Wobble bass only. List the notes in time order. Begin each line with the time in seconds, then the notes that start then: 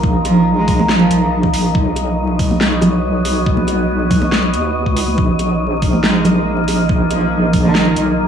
0.04 A#1
1.11 B1
1.32 A#1
1.75 B1
3.46 B1
4.53 D#2
4.86 C#2
5.18 A#1
6.89 A#1
7.96 B1
8.18 A#1